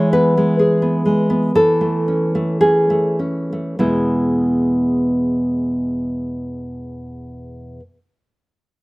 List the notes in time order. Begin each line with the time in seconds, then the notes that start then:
Already playing: E3 G#3
0.13 B3 B4
0.37 G#3
0.59 G#4
0.82 B3
1.05 G#3
1.30 B3
1.55 E3 A4
1.81 A3
2.08 C#4
2.35 A3
2.61 C#4 G#4
2.90 A3
3.19 C#4
3.53 A3
3.79 E2 B2 G#3 B3 E4